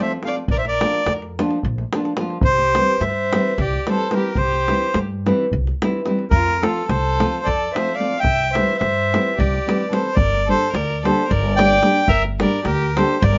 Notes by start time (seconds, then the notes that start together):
0.00 F3 A3 C4 F4 C5 E5
0.11 davul high
0.23 F3 A3 C4 F4 F5, davul high
0.27 D5
0.36 davul high
0.48 A#1 A#4 D5, davul low
0.58 C5 E5
0.65 A#4 D5, davul high
0.81 F3 A#3 D4 F4, davul high
0.94 davul high
1.06 F2, davul high
1.22 davul high
1.39 F3 A#3 D4 F4, davul high
1.51 davul high
1.63 A#1, davul low
1.78 davul high
1.93 F3 A#3 D4 F4, davul high
2.05 davul high
2.17 F3 A#3 D4, davul high
2.21 F4
2.30 davul high
2.41 C2 C5, davul low
2.48 G4
2.58 davul high
2.75 E3 G3 C4 E4, davul high
3.00 G2 E5, davul high
3.05 C5
3.33 E3 G3 C4 E4, davul high
3.58 C2 G4 D5, davul low
3.73 davul high
3.87 E3 G3 C4 E4 C5, davul high
3.92 A4
3.99 davul high
4.11 E3 G3 C4 E4 A#4, davul high
4.17 G4
4.24 davul high
4.35 C2 G4 C5, davul low
4.53 davul high
4.68 E3 G3 C4 E4, davul high
4.94 G2, davul high
5.26 E3 G3 C4 E4, davul high
5.51 C2, davul low
5.67 davul high
5.82 E3 G3 C4 E4, davul high
6.05 E3 G3 C4 E4, davul high
6.19 davul high
6.30 F2 F4 A#4, davul low
6.47 davul high
6.62 F3 A3 C4 F4 A4, davul high
6.89 C2 A4 C5, davul high
7.20 F3 A3 C4 F4, davul high
7.44 F2 A4 D5, davul low
7.73 F3 A3 C4 C5 E5, davul high
7.77 F4
7.89 davul high
7.95 D5 F5
7.99 F3 A3 C4 F4
8.13 davul high
8.20 C2 E5 G5
8.24 davul low
8.53 E3 C5 E5, davul high
8.57 G3 C4 E4
8.69 davul high
8.78 G2 C5 E5, davul high
9.14 E3 G3 C4 E4, davul high
9.38 C2 G4 D5, davul low
9.54 davul high
9.67 E3 G3 C4 E4, davul high
9.81 davul high
9.90 E3 G3 C4 E4 A4 C5, davul high
10.05 davul high
10.15 G1 A#4 D5, davul low
10.34 davul high
10.47 G3 A#3 D4 G4 A4 C5
10.73 D2 A#4 D5, davul high
10.90 davul high
11.04 G3 A#3 D4 G4 A4 C5, davul high
11.28 G1 A#4 D5, davul low
11.56 G3 A#3 D4 G4 D5 G5, davul high
11.83 G3 A#3 D4 G4, davul high
12.08 G1 A#4 E5, davul low
12.24 davul high
12.39 G3 A#3 D4 G4 A#4 D5, davul high
12.65 D2 G4 A#4, davul high
12.82 davul high
12.97 G3 A#3 D4 G4 A4 C5, davul high
13.22 G1 A#4 D5, davul low